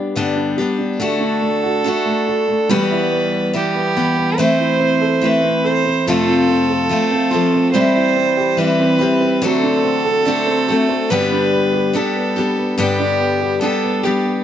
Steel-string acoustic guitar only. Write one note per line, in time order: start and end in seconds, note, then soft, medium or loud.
0.00 0.15 G3 soft
0.00 0.16 B3 medium
0.00 0.16 D4 medium
0.00 0.17 G4 medium
0.15 0.58 G2 medium
0.15 0.58 D3 medium
0.15 0.58 G3 medium
0.15 0.59 B3 medium
0.15 0.58 D4 medium
0.15 0.57 G4 medium
0.58 0.99 G3 soft
0.58 1.00 B3 soft
0.58 1.00 D4 soft
0.58 1.00 G4 soft
1.00 1.83 D3 medium
1.00 1.84 A3 medium
1.00 1.85 D4 medium
1.00 1.86 F#4 medium
1.84 2.69 D3 medium
1.84 2.70 A3 medium
1.84 2.70 D4 medium
1.84 2.70 F#4 medium
2.69 3.54 E2 medium
2.69 3.54 B2 medium
2.69 3.52 E3 medium
2.69 3.53 G3 medium
2.69 3.54 B3 medium
2.69 3.55 F#4 medium
3.53 3.96 E3 medium
3.53 3.96 G3 medium
3.53 3.95 B3 medium
3.97 4.37 E3 soft
3.97 4.39 G3 soft
3.97 4.38 B3 medium
4.38 5.20 E3 medium
4.38 5.21 A3 medium
4.38 5.24 C4 medium
4.38 5.23 E4 medium
5.21 6.06 E3 medium
5.21 6.07 A3 medium
5.21 6.09 C4 medium
5.21 6.08 E4 medium
6.07 6.91 F2 medium
6.07 6.91 C3 medium
6.07 6.88 F3 medium
6.07 6.89 A3 medium
6.07 6.90 C4 medium
6.07 6.91 F4 medium
6.89 7.32 F3 medium
6.89 7.32 A3 medium
6.89 7.31 C4 medium
6.89 7.30 F4 medium
7.31 7.73 F3 soft
7.31 7.74 A3 soft
7.31 7.74 C4 soft
7.31 7.74 F4 medium
7.74 8.56 E3 medium
7.74 8.57 G3 medium
7.74 8.59 C4 medium
7.74 8.59 E4 medium
8.57 9.00 E3 medium
8.57 9.01 G3 medium
8.57 9.00 C4 medium
8.57 8.98 E4 medium
8.99 9.43 G3 soft
8.99 9.42 C4 soft
8.99 9.42 E4 soft
9.42 10.24 D3 medium
9.42 10.25 A3 medium
9.42 10.26 C4 medium
9.42 10.27 F#4 medium
10.25 10.68 D3 medium
10.25 10.69 A3 medium
10.25 10.69 C4 medium
10.25 10.67 F#4 medium
10.68 11.11 A3 soft
10.68 11.11 C4 medium
10.68 11.11 F#4 medium
11.10 11.94 G2 medium
11.10 11.95 D3 medium
11.10 11.92 G3 medium
11.10 11.93 B3 medium
11.10 11.94 D4 medium
11.10 11.95 G4 medium
11.93 12.36 G3 medium
11.93 12.37 B3 medium
11.93 12.36 D4 medium
11.93 12.35 G4 medium
12.36 12.77 G3 soft
12.36 12.77 B3 soft
12.36 12.78 D4 soft
12.36 12.78 G4 medium
12.78 13.62 G2 medium
12.78 13.62 D3 medium
12.78 13.60 G3 medium
12.78 13.61 B3 medium
12.78 13.62 D4 medium
12.78 13.63 G4 medium
13.61 14.04 G3 medium
13.61 14.04 B3 medium
13.61 14.04 D4 medium
13.61 14.02 G4 medium
14.03 14.44 G3 soft
14.03 14.44 B3 soft
14.03 14.44 D4 soft
14.03 14.44 G4 medium